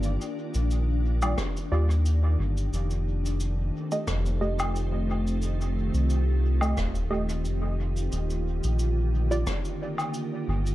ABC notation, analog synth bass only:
X:1
M:4/4
L:1/16
Q:"Swing 16ths" 1/4=89
K:Fmix
V:1 name="Analog synth bass" clef=bass
G,,, z2 B,,,4- B,,, z2 E,,4 G,,,2 | F,,,6 z2 F,,,8- | F,,,3 C,,4- C,, E,,,4 F,,,4 | E,,,3 B,,,4- B,,, z6 G,,,2 |]